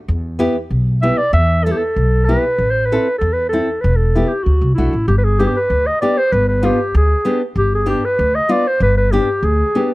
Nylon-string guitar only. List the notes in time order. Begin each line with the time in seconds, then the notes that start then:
0.39 B3 E4 G4
1.03 B3 E4 G4
1.66 B3 E4 A4
2.29 B3 E4 G4
2.92 C4 E4 A4
3.53 C4 E4 A4
4.15 B3 E4 G4
4.78 A3 D4 F#4
5.39 B3 D4 G4
6.02 B3 D4 G4
6.63 B3 D4 F4
7.25 B3 D4 G4
7.86 B3 D4 G4
8.49 B3 D4 F4
9.13 B3 D4 G4
9.75 B3 D4 G4